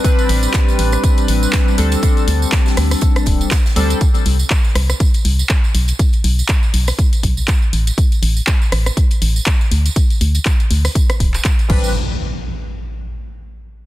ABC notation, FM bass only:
X:1
M:4/4
L:1/8
Q:"Swing 16ths" 1/4=121
K:Am
V:1 name="FM bass" clef=bass
z A,,, z A,,, z A,,, z D,, | z D,, z D,, z D,,, z D,, | z C,, z C,, z C,, z B,,, | z B,,, z B,,, z B,,, z A,,, |
z A,,, z A,,, z A,,, z D,, | z D,, z D,, z D,,, z A,,, | z8 |]